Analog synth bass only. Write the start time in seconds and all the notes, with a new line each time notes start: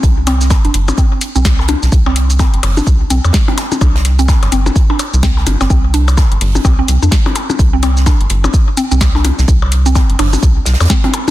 0.03 C2
0.65 G1
0.74 G1
1.35 C2
1.83 C2
1.92 C2
2.54 G1
2.63 G1
2.87 C2
3.10 C2
3.24 F2
3.81 C2
4.43 G1
4.52 G1
5.13 C2
5.47 G1
5.61 G1
5.70 C2
6.32 G1
6.41 G1
6.65 C2
6.88 C2
7.02 F2
7.59 C2
8.21 G1
8.30 G1
8.91 C2
9.39 C2
9.48 C2
10.10 G1
10.19 G1
10.43 C2
10.66 C2
10.80 F2